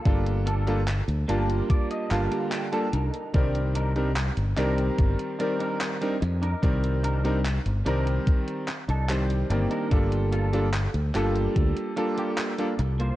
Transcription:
<<
  \new Staff \with { instrumentName = "Clean electric guitar" } { \time 4/4 \key c \dorian \tempo 4 = 73 << { r4. bes'8 d''16 ees''16 f''8 g''16 a''8. | r1 | r1 | r1 | } \\ { r8 <bes f' a'>16 r8. <bes f' a'>16 r4 <bes f' g'>16 r8 <d' ees' bes'>8~ | <d' ees' bes'>16 r16 <d' ees' bes'>16 r8. <d' ees' bes'>16 r4 <d' ees' bes'>16 r8. <d' ees' bes'>16 | r8 <d' ees' bes'>16 r8. <d' ees' bes'>16 r4 <d' ees' a'>16 r8. <d' ees' bes'>16 | r8 <bes f' a'>16 r8. <bes f' a'>16 r4 <bes f' g'>16 r8. <bes f' c''>16 | } >> }
  \new Staff \with { instrumentName = "Electric grand piano" } { \time 4/4 \key c \dorian <g bes d' f' a'>8. <g bes d' f' a'>16 r8 <g bes d' f' a''>4 <d g bes f' a''>8. <g bes d' f' a'>16 r8 | <ees g c' bes' d''>8. <g c' d' ees' bes'>16 r8 <ees g c' bes' d''>4 <ees g c' bes' d''>8. <g c' d' ees' bes'>16 r8 | <ees g c' bes' d''>8. <g c' d' ees' bes'>16 r8 <ees g c' bes' d''>4 r8 <ees g c' c'' d''>8 <ees g bes c' d''>8 | <g bes d' f' a'>8. <g bes d' f' a'>16 r8 <g bes d' f' a'>4 <g bes d' f' a'>8. <g bes d' f' a'>16 r8 | }
  \new Staff \with { instrumentName = "Fingered electric bass" } { \clef bass \time 4/4 \key c \dorian g,,4~ g,,16 d,16 g,,8 r8 g,,16 r8. c,16 r16 | c,4~ c,16 g,,16 c,8 g,,16 r4 r16 f,8 | c,4~ c,16 g,,16 c,8 r8. c,8. g,,16 r16 | g,,4~ g,,16 d,16 g,,8 d,16 r4 r16 c,8 | }
  \new DrumStaff \with { instrumentName = "Drums" } \drummode { \time 4/4 <hh bd>16 hh16 hh16 hh16 <hc hh>16 hh16 hh16 hh16 <hh bd>16 hh16 <hc hh>16 hh16 <hc hh>16 hh16 hh16 hh16 | <hh bd>16 hh16 hh16 hh16 <hc hh>16 hh16 <hc hh>16 hh16 <hh bd>16 hh16 hh16 hh16 <hc hh>16 hh16 hh16 hh16 | <hh bd>16 hh16 hh16 hh16 <hc hh>16 hh16 hh16 hh16 <hh bd>16 hh16 <hc hh>16 hh16 <hc hh>16 hh16 hh16 hh16 | <hh bd>16 hh16 hh16 hh16 <hc hh>16 hh16 <hc hh>16 hh16 <hh bd>16 hh16 hh16 hh16 <hc hh>16 hh16 hh16 hh16 | }
>>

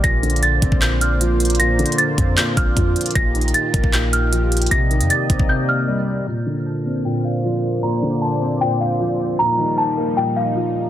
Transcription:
<<
  \new Staff \with { instrumentName = "Celesta" } { \time 4/4 \key bes \major \tempo 4 = 154 bes'''4 a'''4 g'''8 f'''4. | bes'''4 a'''4 g'''8 f'''4. | bes'''4 a'''4 g'''8 f'''4. | bes'''4 a'''4 g'''8 f'''4. |
bes''4 a''4 g''8 f''4. | bes''4 a''4 g''8 f''4. | bes''4 a''4 g''8 f''4. | }
  \new Staff \with { instrumentName = "Analog synth pad" } { \time 4/4 \key bes \major << { <f' c'' d''>1~ | <f' c'' d''>1 | <ees' g'>1 | <d'' ees''>1 |
<bes c'' d''>1~ | <bes c'' d''>1 | <f g ees'>1 | } \\ { bes1~ | bes1 | r1 | bes1 |
bes,1~ | bes,1~ | bes,1 | } >> }
  \new Staff \with { instrumentName = "Grand piano" } { \clef bass \time 4/4 \key bes \major bes,8 d4 c'8 bes,4 f4 | bes,8 d4 c'8 bes,4 f4 | bes,8 ees4 bes8 bes,4 f4 | c8 ees4 c'8 c4 g4 |
bes,8 d4 c'8 bes,4 f4 | bes,8 d4 c'8 bes,4 f4 | bes,8 ees4 bes8 bes,4 f4 | }
  \new Staff \with { instrumentName = "808-style bass" } { \clef bass \time 4/4 \key bes \major bes,,4. bes,,16 bes,,2~ bes,,16~ | bes,,8. r8. f,8 r8 bes,,8 f,8 r8 | bes,,4 r8 a,,16 bes,,2~ bes,,16 | bes,,8. f,16 r8 bes,,16 bes,,16 r2 |
r1 | r1 | r1 | }
  \new DrumStaff \with { instrumentName = "Drums" } \drummode { \time 4/4 \tuplet 3/2 { <hh bd>16 r16 r16 hh16 hh16 hh16 } hh8 <hh bd>16 bd16 <hc hh>8 hh8 hh8 hh32 hh32 hh32 hh32 | \tuplet 3/2 { hh16 r16 r16 hh16 hh16 hh16 } hh8 <hh bd>8 <hc hh>8 <hh bd>8 <hh bd>8 hh32 hh32 hh32 hh32 | \tuplet 3/2 { <hh bd>16 r16 r16 hh16 hh16 hh16 } hh8 <hh bd>16 bd16 <hc hh>8 hh8 hh8 hh32 hh32 hh32 hh32 | hh8 hh16 hh16 hh8 <hh bd>16 bd16 r4 r4 |
r4 r4 r4 r4 | r4 r4 r4 r4 | r4 r4 r4 r4 | }
>>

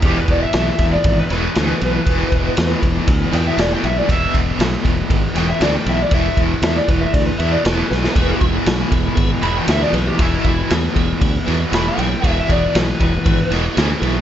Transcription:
<<
  \new Staff \with { instrumentName = "Lead electric guitar" } { \time 4/4 \key e \mixolydian \tempo 4 = 118 g'16 b'16 d''16 e''4 d''8 b'16 b'4.~ | b'4. r4 g''16 e''16 d''16 g''16 e''16 d''16 | e''8 r2 g''16 e''16 d''16 g''16 e''16 d''16 | e''8 r8 e''16 d''16 b'16 e''16 d''16 b'16 e''16 d''16 b'8 b'8~ |
b'8 r2 b''16 g''16 e''16 d''16 b'16 g'16 | e'8 e'8 r2 b''16 g''8.~ | g''16 e''16 d''8 b'8 b'4 r4. | }
  \new Staff \with { instrumentName = "Tonewheel organ" } { \time 4/4 \key e \mixolydian r1 | r1 | r1 | r1 |
<b e' gis' b'>8 <b e' gis' b'>8 <b e' gis' cis''>8 <b e' gis' b'>8 <b e' gis' b'>8 <b e' gis' b'>8 <e' gis' cis''>8 <b e' gis' b'>8 | <b e' gis' d''>8 <b e' gis' d''>8 <b e' gis' b'>8 <b e' gis' b'>8 <b e' gis' d''>8 <b e' gis' b'>8 <b e' gis' b'>8 <b e' gis' cis''>8 | <b e' gis' b'>8 <b e' gis' cis''>8 <b e' gis' b'>8 <b e' gis' cis''>8 <b e' gis' b'>8 <b e' gis' d''>8 <b e' gis' d''>8 <b e' gis' b'>8 | }
  \new Staff \with { instrumentName = "Overdriven electric guitar" } { \clef bass \time 4/4 \key e \mixolydian <e, b, e>2~ <e, b, e>8 <e, b, e>8 <e, b, e>4 | <e, b, e>2~ <e, b, e>8 <e, b, e>8 <e, b, e>4 | <e, b, e>2~ <e, b, e>8 <e, b, e>8 <e, b, e>4 | <e, b, e>2~ <e, b, e>8 <e, b, e>8 <e, b, e>4 |
<e, b, e>2~ <e, b, e>8 <e, b, e>8 <e, b, e>4 | <e, b, e>2~ <e, b, e>8 <e, b, e>8 <e, b, e>4 | <e, b, e>2~ <e, b, e>8 <e, b, e>8 <e, b, e>4 | }
  \new Staff \with { instrumentName = "Fingered electric bass" } { \clef bass \time 4/4 \key e \mixolydian e,,8 e,,8 b,,8 e,,8 gis,,8 e,,8 d,8 b,,8 | e,,8 e,,8 e,8 e,,8 d,8 e,8 e,,8 b,,8 | e,,8 e,,8 b,,8 e,,8 gis,,8 e,,8 d,8 b,,8 | e,,8 e,,8 e,8 e,,8 d,8 e,8 e,,8 b,,8 |
e,,8 e,,8 b,,8 e,,8 gis,,8 e,,8 d,8 b,,8 | e,,8 e,,8 e,8 e,,8 d,8 e,8 e,,8 b,,8 | e,,8 e,,8 b,,8 e,,8 gis,,8 e,,8 d,8 b,,8 | }
  \new DrumStaff \with { instrumentName = "Drums" } \drummode { \time 4/4 <bd cymr>8 <bd cymr>8 <cymr sn>8 <bd cymr sn>8 <bd cymr>8 <cymr sn>8 <cymr sn>8 cymr8 | <bd cymr>8 <bd cymr>8 <cymr sn>8 <bd cymr>8 <bd cymr>8 <cymr sn>8 <cymr sn>8 cymr8 | <bd cymr>8 <bd cymr>8 <cymr sn>8 <bd cymr sn>8 <bd cymr>8 <cymr sn>8 <cymr sn>8 cymr8 | <bd cymr>8 <bd cymr>8 <cymr sn>8 <bd cymr>8 <bd cymr>8 cymr8 <cymr sn>8 sn16 sn16 |
<bd cymr>8 <bd cymr>8 <cymr sn>8 <bd cymr>8 <bd cymr>8 cymr8 <cymr sn>8 cymr8 | <bd cymr>8 <bd cymr>8 <cymr sn>8 <bd cymr>8 <bd cymr>8 <cymr sn>8 <cymr sn>8 cymr8 | <bd cymr>8 <bd cymr>8 <cymr sn>8 <bd cymr>8 <bd cymr>8 <cymr sn>8 <cymr sn>8 cymr8 | }
>>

